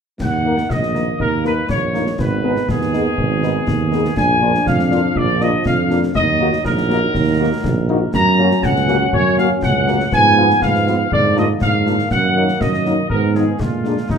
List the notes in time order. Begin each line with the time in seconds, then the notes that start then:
0.20 D#2 D#3 A#3 F#5, concert bass drum, snare, crash
0.45 A#3 D#4 A#4
0.58 snare
0.69 A#1 D#5, concert bass drum, snare
0.83 snare
0.94 A#3 D#4 A#4, snare
1.19 D#2 A#4, concert bass drum
1.43 A#3 D#4 A#4 B4, snare
1.69 A#1 C#5, concert bass drum, snare
1.93 A#3 D#4 A#4, snare
2.06 snare
2.18 G#1 D#3 B3 B4, concert bass drum, snare
2.43 B3 D#4 G#4
2.56 snare
2.68 D#2 G#4, concert bass drum, snare
2.81 snare
2.93 B3 D#4 G#4, snare
3.18 G#1, concert bass drum
3.43 B3 D#4 G#4, snare
3.67 D#2, concert bass drum, snare
3.92 B3 D#4 G#4, snare
4.05 snare
4.16 A#1 F3 D4 G#5, concert bass drum, snare, crash
4.41 A#3 D4 F4
4.54 snare
4.66 F2 F5, concert bass drum, snare
4.79 snare
4.90 A#3 D4 F4, snare
5.15 A#1 D5, concert bass drum
5.40 A#3 D4 F4 D#5, snare
5.65 F2 F5, concert bass drum, snare
5.90 A#3 D4 F4, snare
6.03 snare
6.14 D#2 F#3 D#4 D#5, concert bass drum, snare
6.40 A#3 D#4 F#4
6.53 snare
6.64 A#1 A#4, concert bass drum, snare
6.77 snare
6.89 A#3 D#4 F#4, snare
7.14 D#2, concert bass drum, snare
7.39 A#3 D#4 F#4
7.64 A#1, concert bass drum, snare
7.89 A#3 D#4 F#4
8.13 F#2 F#3 C#4 A#5, concert bass drum, snare, crash
8.39 A#3 C#4 F#4
8.51 snare
8.63 C#2 F#5, concert bass drum, snare
8.76 snare
8.88 A#3 C#4 F#4, snare
9.13 F#2 C#5, concert bass drum
9.38 A#3 C#4 F#4 F5, snare
9.62 C#2 F#5, concert bass drum, snare
9.87 A#3 C#4 F#4, snare
10.00 snare
10.11 G#2 F3 B3 G#5, concert bass drum, snare
10.37 B3 F4
10.50 snare
10.62 G#2 F5, concert bass drum, snare
10.75 snare
10.86 B3 F4, snare
11.11 G#2 D3 A#3 D5, concert bass drum
11.36 A#3 D4 F4 D#5, snare
11.61 G#2 F5, concert bass drum, snare
11.86 A#3 D4 F4, snare
11.99 snare
12.10 F#2 D#3 F#5, concert bass drum, snare, crash
12.36 F#3 A#3 D#4
12.48 snare
12.60 F#2 D#5, concert bass drum, snare
12.73 snare
12.85 F#3 A#3 D#4, snare
13.09 G#2 B3 A#4, concert bass drum
13.34 F3 B3 D#4 G#4, snare
13.59 A#2 D3 G#3 F4, concert bass drum, snare
13.85 G#3 A#3 D4, snare
13.97 snare
14.09 D#2 D#3 F#3 D#4, concert bass drum, snare